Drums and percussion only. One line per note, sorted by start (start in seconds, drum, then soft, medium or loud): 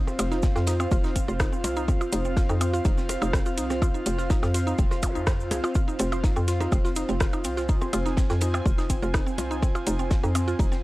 0.07 percussion blips soft
0.07 cabasa soft
0.19 closed hi-hat loud
0.19 ride medium
0.19 cabasa loud
0.19 percussion blips medium
0.32 snare soft
0.32 cabasa soft
0.43 kick loud
0.43 snare loud
0.43 ride medium
0.43 cabasa medium
0.56 snare medium
0.56 cabasa soft
0.67 snare medium
0.67 closed hi-hat loud
0.67 ride medium
0.67 percussion blips soft
0.67 cabasa medium
0.80 cabasa soft
0.80 percussion blips medium
0.91 kick loud
0.91 ride medium
0.91 cabasa medium
1.04 snare soft
1.04 cabasa soft
1.16 kick medium
1.16 closed hi-hat loud
1.16 ride medium
1.16 cabasa medium
1.28 percussion blips soft
1.28 cabasa soft
1.40 kick loud
1.40 cross-stick loud
1.40 snare loud
1.40 ride medium
1.40 cabasa medium
1.40 percussion blips medium
1.53 cabasa soft
1.64 closed hi-hat loud
1.64 ride medium
1.64 percussion blips loud
1.64 cabasa loud
1.76 cabasa soft
1.88 kick loud
1.88 ride medium
1.88 percussion blips soft
1.88 cabasa medium
2.01 cabasa soft
2.01 percussion blips medium
2.12 closed hi-hat loud
2.12 ride medium
2.12 cabasa loud
2.25 cabasa soft
2.37 kick loud
2.37 snare loud
2.37 ride medium
2.37 cabasa medium
2.49 percussion blips soft
2.49 cabasa soft
2.61 closed hi-hat medium
2.61 ride medium
2.61 cabasa medium
2.61 percussion blips medium
2.73 ride soft
2.73 cabasa soft
2.85 kick loud
2.85 ride loud
2.85 cabasa medium
2.98 snare soft
2.98 cabasa soft
3.09 closed hi-hat loud
3.09 ride medium
3.09 percussion blips soft
3.09 cabasa loud
3.22 ride soft
3.22 cabasa soft
3.22 percussion blips medium
3.33 kick loud
3.33 cross-stick loud
3.33 snare loud
3.33 ride loud
3.33 cabasa medium
3.46 cabasa soft
3.58 closed hi-hat loud
3.58 ride medium
3.58 cabasa loud
3.70 snare medium
3.70 percussion blips soft
3.70 cabasa soft
3.82 kick loud
3.82 ride medium
3.82 cabasa medium
3.82 percussion blips medium
3.95 cabasa soft
4.06 closed hi-hat loud
4.06 ride medium
4.06 cabasa medium
4.18 snare soft
4.18 cabasa soft
4.30 kick loud
4.30 snare loud
4.30 ride medium
4.30 percussion blips soft
4.30 cabasa medium
4.42 snare medium
4.42 cabasa soft
4.42 percussion blips medium
4.54 snare medium
4.54 closed hi-hat loud
4.54 ride medium
4.54 cabasa loud
4.67 cabasa soft
4.78 kick loud
4.78 ride loud
4.78 cabasa medium
4.91 snare soft
4.91 percussion blips soft
4.91 cabasa soft
5.03 kick medium
5.03 closed hi-hat loud
5.03 ride medium
5.03 cabasa loud
5.03 percussion blips medium
5.16 cabasa soft
5.27 kick loud
5.27 cross-stick loud
5.27 snare loud
5.27 ride medium
5.27 cabasa medium
5.40 cabasa soft
5.51 closed hi-hat loud
5.51 ride medium
5.51 percussion blips soft
5.51 percussion blips medium
5.51 cabasa loud
5.64 cabasa soft
5.64 percussion blips medium
5.75 kick loud
5.75 ride medium
5.75 cabasa medium
5.89 cabasa soft
5.99 closed hi-hat medium
5.99 ride medium
5.99 percussion blips soft
5.99 cabasa medium
6.12 cabasa soft
6.12 percussion blips medium
6.24 kick loud
6.24 snare loud
6.24 ride medium
6.24 cabasa medium
6.36 cabasa soft
6.48 snare medium
6.48 closed hi-hat medium
6.48 ride medium
6.48 cabasa medium
6.60 ride soft
6.60 percussion blips soft
6.60 cabasa soft
6.72 kick loud
6.72 ride medium
6.72 cabasa medium
6.72 percussion blips medium
6.84 snare soft
6.84 cabasa soft
6.96 closed hi-hat medium
6.96 ride medium
6.96 cabasa medium
7.09 ride soft
7.09 cabasa soft
7.20 kick loud
7.20 cross-stick loud
7.20 snare loud
7.20 ride medium
7.20 percussion blips soft
7.20 cabasa medium
7.33 cabasa soft
7.33 percussion blips medium
7.44 closed hi-hat loud
7.44 ride medium
7.44 cabasa loud
7.57 snare soft
7.57 cabasa soft
7.69 kick loud
7.69 ride medium
7.69 cabasa soft
7.81 percussion blips soft
7.81 cabasa soft
7.93 closed hi-hat medium
7.93 ride medium
7.93 cabasa medium
7.93 percussion blips medium
8.06 snare soft
8.06 cabasa soft
8.17 kick loud
8.17 snare loud
8.17 ride loud
8.17 cabasa medium
8.30 snare medium
8.30 cabasa soft
8.41 closed hi-hat medium
8.41 ride medium
8.41 percussion blips soft
8.41 cabasa medium
8.54 cabasa soft
8.54 percussion blips medium
8.66 kick loud
8.66 ride medium
8.66 cabasa soft
8.78 snare soft
8.78 cabasa soft
8.90 kick medium
8.90 closed hi-hat medium
8.90 ride medium
8.90 cabasa medium
9.03 percussion blips soft
9.03 cabasa soft
9.14 kick loud
9.14 cross-stick loud
9.14 snare loud
9.14 ride medium
9.14 cabasa medium
9.14 percussion blips medium
9.27 cabasa soft
9.38 closed hi-hat medium
9.38 ride medium
9.38 percussion blips medium
9.38 cabasa medium
9.51 cabasa soft
9.62 kick loud
9.62 ride medium
9.62 percussion blips soft
9.62 cabasa medium
9.75 cabasa soft
9.75 percussion blips medium
9.87 closed hi-hat medium
9.87 ride medium
9.87 cabasa medium
9.99 cabasa soft
10.11 kick loud
10.11 snare loud
10.11 ride medium
10.11 cabasa medium
10.24 percussion blips soft
10.24 cabasa soft
10.35 closed hi-hat medium
10.35 ride medium
10.35 cabasa medium
10.35 percussion blips medium
10.48 ride soft
10.48 cabasa soft
10.59 kick loud
10.59 ride loud
10.59 cabasa soft
10.72 snare soft
10.72 cabasa soft